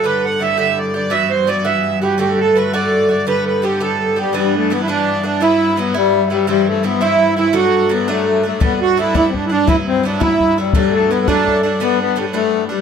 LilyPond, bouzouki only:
\new Staff \with { instrumentName = "Bouzouki" } { \time 6/8 \key g \major \tempo 4. = 112 <a, d b g'>4 <a, d b g'>8 <a, d b g'>4 <d b g'>8 | <g, e b fis'>4 <g, e b fis'>8 <g, e b fis'>4 <e b fis'>8 | <a, d a fis'>4 <a, d a fis'>8 <a, d a fis'>4 <d a fis'>8 | <a, d b g'>4 <a, d b g'>8 <a, d b g'>4 <d b g'>8 |
<g, e b d'>4 <g, e b d'>8 <g, e b d'>4 <e b d'>8 | <g, fis b e'>4 <g, fis b e'>8 <g, b e'>4 <fis b e'>8 | <g, e c' e'>4 <g, e c' e'>8 <g, e c' e'>4 <e c' e'>8 | <a, fis a d'>4 <a, fis a d'>8 <a, fis a d'>4 <fis a d'>8 |
<a, g b d'>4 <a, g b d'>8 <a, g b d'>4 <g b d'>8 | <g, fis b e'>4 <g, fis b e'>8 <g, fis b e'>4 <fis b e'>8 | <a, fis a d'>4 <a, fis a d'>8 <a, fis a d'>4 <fis a d'>8 | <a, g b d'>4 <a, g b d'>8 <a, g b d'>4 <g b d'>8 | }